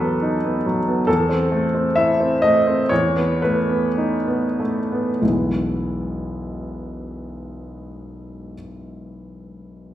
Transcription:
0.00 1.05 E2 soft
0.00 0.14 F#3 soft
0.00 0.44 B3 soft
0.00 0.65 A4 soft
0.00 1.09 B4 medium
0.22 0.56 D#4 soft
0.44 0.78 B3 soft
0.66 1.00 F#3 soft
0.88 1.08 B3 soft
1.07 2.87 E2 soft
1.07 1.95 A4 medium
1.29 1.64 C4 soft
1.52 1.87 A3 soft
1.74 2.10 C4 soft
1.96 2.33 E4 soft
1.96 2.42 E5 medium
2.20 2.57 C4 soft
2.42 2.81 A3 soft
2.42 2.90 D#5 medium
2.67 2.91 C4 soft
2.89 5.18 E2 soft
2.89 3.41 C#5 medium
3.16 3.58 B3 soft
3.42 3.87 A3 soft
3.42 4.59 B4 soft
3.70 4.15 B3 soft
3.98 4.46 D#4 soft
4.28 4.79 B3 soft
4.60 5.10 A3 soft
4.92 5.21 B3 soft
5.21 8.53 E1 soft
5.21 8.53 B1 soft
5.21 8.53 E3 soft
5.21 8.53 G#3 soft
5.21 8.54 B3 soft
5.21 8.54 E4 soft
5.21 8.53 G#4 soft

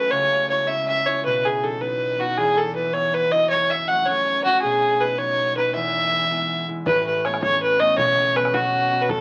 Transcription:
0.00 0.16 F#2 medium
0.00 0.56 A3 medium
0.00 1.63 B3 soft
0.00 0.50 C#4 soft
0.00 0.51 E4 soft
0.00 2.37 F#4 medium
0.00 0.13 B4 medium
0.11 1.29 C#2 medium
0.11 0.49 C#5 loud
0.50 0.67 G#3 soft
0.50 0.68 C#4 soft
0.50 0.68 E4 soft
0.50 0.69 C#5 medium
0.68 1.05 G#3 soft
0.68 1.06 C#4 soft
0.68 1.07 E4 medium
0.68 0.87 E5 medium
0.88 1.08 E5 medium
1.06 1.29 G#3 soft
1.06 3.89 C#4 soft
1.06 1.69 E4 medium
1.06 1.24 C#5 medium
1.25 2.42 B2 medium
1.25 1.47 B4 medium
1.45 1.65 G#4 medium
1.63 1.79 F#3 soft
1.63 1.80 B3 soft
1.63 1.81 D#4 soft
1.63 1.83 A4 medium
1.80 2.18 F#3 soft
1.80 2.19 B3 soft
1.80 2.20 D#4 soft
1.80 2.21 B4 medium
2.19 2.42 F#3 soft
2.19 2.76 B3 soft
2.19 2.44 D#4 medium
2.19 2.39 F#4 medium
2.37 3.55 E2 medium
2.37 2.59 G#4 medium
2.57 2.75 A4 medium
2.76 2.92 F#3 soft
2.76 2.93 B3 soft
2.76 2.94 E4 soft
2.76 2.95 B4 medium
2.93 3.31 F#3 soft
2.93 3.32 B3 soft
2.93 3.32 E4 soft
2.93 3.16 C#5 medium
3.14 3.33 B4 medium
3.32 3.55 F#3 soft
3.32 5.01 B3 soft
3.32 5.08 E4 medium
3.32 3.49 D#5 loud
3.50 4.67 F#2 medium
3.50 3.72 C#5 medium
3.70 3.89 E5 medium
3.88 4.05 F#3 soft
3.88 4.06 A3 soft
3.88 4.07 C#4 soft
3.88 4.07 F#5 medium
4.06 4.43 F#3 soft
4.06 4.44 A3 soft
4.06 4.45 C#4 medium
4.06 4.44 C#5 loud
4.44 4.67 F#3 soft
4.44 6.18 A3 soft
4.44 7.24 C#4 medium
4.44 4.61 F#4 medium
4.62 5.79 B2 medium
4.62 5.03 G#4 medium
5.01 5.17 F#3 soft
5.01 5.18 B3 soft
5.01 5.18 D#4 medium
5.01 5.20 B4 medium
5.17 5.55 F#3 soft
5.17 5.56 B3 soft
5.17 5.56 D#4 soft
5.17 5.56 C#5 medium
5.56 5.79 F#3 soft
5.56 6.12 B3 soft
5.56 5.81 D#4 medium
5.56 5.73 B4 medium
5.75 6.91 E2 medium
5.75 6.65 E5 loud
6.12 6.29 G#3 soft
6.12 6.30 B3 soft
6.12 6.31 E4 soft
6.30 6.67 G#3 soft
6.30 6.68 B3 soft
6.30 6.68 E4 soft
6.68 6.91 G#3 soft
6.68 7.24 B3 soft
6.68 9.21 E4 medium
6.86 8.03 A1 medium
6.86 8.03 A2 medium
6.86 7.05 B4 medium
6.86 bodhran medium
7.07 7.27 B4 medium
7.07 bodhran soft
7.24 7.40 A3 soft
7.24 7.41 B3 soft
7.24 7.41 C#4 soft
7.24 7.42 C#5 medium
7.24 bodhran medium
7.34 bodhran medium
7.41 7.79 A3 soft
7.41 7.79 B3 soft
7.41 7.80 C#4 medium
7.41 7.61 C#5 medium
7.41 bodhran medium
7.63 7.82 B4 medium
7.79 9.21 A3 medium
7.79 8.35 B3 medium
7.79 8.35 C#4 medium
7.79 7.97 D#5 loud
7.97 9.14 B1 medium
7.97 9.14 B2 medium
7.97 8.38 C#5 loud
7.97 bodhran medium
8.19 bodhran soft
8.34 8.51 F#3 soft
8.34 8.53 B3 soft
8.34 8.53 C#4 medium
8.34 8.56 B4 medium
8.34 bodhran medium
8.45 bodhran medium
8.52 8.89 F#3 soft
8.52 8.90 B3 soft
8.52 8.91 C#4 medium
8.52 9.03 F#4 medium
8.52 bodhran medium
8.90 9.14 F#3 medium
8.90 9.21 B3 medium
8.90 9.21 C#4 medium
9.02 9.11 B4 medium
9.08 9.21 A1 medium
9.08 9.21 A2 medium
9.08 9.21 A4 medium
9.08 bodhran medium

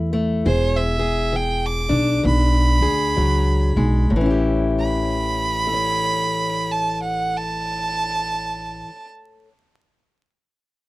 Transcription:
0.00 0.41 E2 loud
0.00 0.39 A2 medium
0.00 0.45 E3 medium
0.00 0.12 A3 medium
0.00 1.89 E4 medium
0.00 0.42 G4 medium
0.13 0.45 A3 medium
0.46 1.85 E1 medium
0.46 1.27 E3 medium
0.46 0.98 G#4 medium
0.46 0.78 C5 loud
0.76 1.38 E5 medium
0.99 2.80 G#4 medium
1.32 2.16 E3 medium
1.32 1.67 G5 medium
1.66 2.23 D6 medium
1.89 2.21 B1 medium
1.89 4.07 D4 medium
2.23 2.77 B1 medium
2.23 3.09 E3 medium
2.23 4.09 B5 loud
2.81 3.12 D2 medium
2.81 4.08 G#4 medium
3.17 3.72 C#2 medium
3.17 3.75 F#3 medium
3.76 4.08 B1 medium
3.76 4.12 G#3 medium
4.10 8.80 A1 medium
4.10 8.84 A2 medium
4.16 8.89 E3 medium
4.21 5.67 C#4 medium
4.26 5.73 E4 medium
4.31 9.04 G4 medium
4.79 6.73 B5 loud
5.67 9.48 A4 medium
5.74 9.52 C#5 medium
6.71 7.02 A5 medium
7.02 7.38 F#5 medium
7.37 9.09 A5 medium

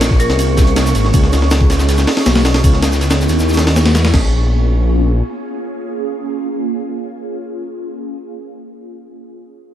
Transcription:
0.00 0.28 A#1 loud
0.00 1.11 A#3 medium
0.00 4.10 C#4 medium
0.00 1.11 F4 medium
0.00 4.10 G#4 medium
0.00 4.14 C#6 medium
0.00 snare loud
0.00 ride medium
0.00 shaker medium
0.11 kick medium
0.11 snare medium
0.20 0.26 A#4 medium
0.20 ride medium
0.20 shaker medium
0.29 0.93 C2 loud
0.29 0.35 A#4 medium
0.29 snare medium
0.29 closed hi-hat soft
0.39 ride medium
0.39 shaker medium
0.57 kick loud
0.57 snare loud
0.57 ride medium
0.57 shaker medium
0.67 closed hi-hat soft
0.76 snare loud
0.76 ride medium
0.76 shaker medium
0.86 snare loud
0.86 shaker medium
0.95 1.12 G#1 medium
0.95 snare medium
0.95 ride medium
0.95 shaker medium
1.05 snare soft
1.14 2.06 C#2 loud
1.14 4.11 B3 medium
1.14 4.11 E4 medium
1.14 kick loud
1.14 ride medium
1.14 shaker medium
1.23 snare soft
1.32 snare medium
1.32 ride medium
1.32 shaker medium
1.42 snare medium
1.51 snare loud
1.51 open hi-hat medium
1.51 shaker medium
1.61 kick loud
1.70 snare medium
1.70 snare loud
1.70 ride medium
1.70 shaker medium
1.79 snare loud
1.79 snare medium
1.79 shaker medium
1.89 snare loud
1.89 ride medium
1.89 shaker medium
1.98 snare medium
1.98 snare loud
1.98 shaker medium
2.07 snare loud
2.07 open hi-hat medium
2.17 snare loud
2.17 open hi-hat medium
2.26 2.62 B1 medium
2.26 snare loud
2.26 open hi-hat medium
2.26 shaker medium
2.35 snare loud
2.35 open hi-hat medium
2.45 snare loud
2.45 open hi-hat medium
2.45 shaker medium
2.54 snare medium
2.54 snare loud
2.54 open hi-hat medium
2.64 3.28 C#2 loud
2.64 kick loud
2.64 ride medium
2.64 shaker medium
2.73 snare soft
2.82 snare loud
2.82 ride medium
2.82 shaker medium
2.92 snare medium
2.92 shaker medium
3.01 snare loud
3.01 ride medium
3.01 shaker medium
3.10 snare loud
3.10 ride medium
3.10 shaker medium
3.20 snare loud
3.20 shaker medium
3.29 3.96 D#2 loud
3.29 snare loud
3.29 ride medium
3.29 shaker medium
3.39 snare loud
3.39 shaker medium
3.49 snare medium
3.49 shaker medium
3.53 snare medium
3.53 shaker medium
3.57 snare loud
3.57 open hi-hat medium
3.57 shaker medium
3.67 snare loud
3.67 closed hi-hat soft
3.67 open hi-hat medium
3.76 snare loud
3.76 open hi-hat medium
3.76 shaker medium
3.85 snare medium
3.85 snare loud
3.85 open hi-hat medium
3.95 4.12 E2 loud
3.95 snare loud
3.95 snare medium
3.95 open hi-hat medium
3.95 shaker medium
4.05 snare loud
4.05 open hi-hat medium
4.14 5.22 A#1 loud
4.14 7.90 A#3 medium
4.14 7.90 C#4 medium
4.14 7.90 F4 medium
4.14 7.90 G#4 medium
4.14 kick loud
4.14 snare loud
4.14 crash medium

